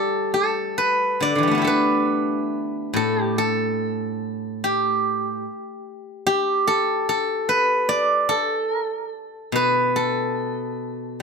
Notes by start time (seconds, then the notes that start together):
Already playing: G3 G4 A4
0.34 A4
0.78 B4
1.20 D3 D5
1.35 D3 E3
1.43 G3
1.48 A3 B3
1.55 D4 E4
1.62 G4 A4
1.67 B4
2.94 A2 A4
3.21 G4
3.38 A4
4.64 G4
6.27 G4
6.67 A4
7.09 A4
7.49 B4
7.89 D5
8.29 A4
8.72 A#4
8.84 A4
8.96 A#4
9.08 A4
9.52 B2 B4
9.96 A4